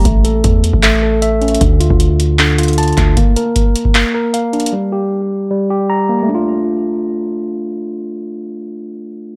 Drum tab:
HH |x-----------x-----------x-----------x-----------x-----------------------x-----------x---x---x---|x-----------x-----------x-----------x-----------x-----------x--x--x--x--x--x--x--x--x-----------|x-----------x-----------x-----------x-----------x-----------------------x-----------x---x---x---|------------------------------------------------------------------------------------------------|
CP |------------------------------------------------x-----------------------------------------------|------------------------------------------------x-----------------------------------x-----------|------------------------------------------------x-----------------------------------------------|------------------------------------------------------------------------------------------------|
BD |o-----------------------o-----------------o-----------------------------------------------------|o-----------------o-----------------------------------------------------------------o-----------|o-----------------------o-----------------o-----------------------------------------------------|------------------------------------------------------------------------------------------------|

HH |------------------------------------------------------------------------------------------------|------------------------------------------------------------------------------------------------|
CP |------------------------------------------------------------------------------------------------|------------------------------------------------------------------------------------------------|
BD |------------------------------------------------------------------------------------------------|------------------------------------------------------------------------------------------------|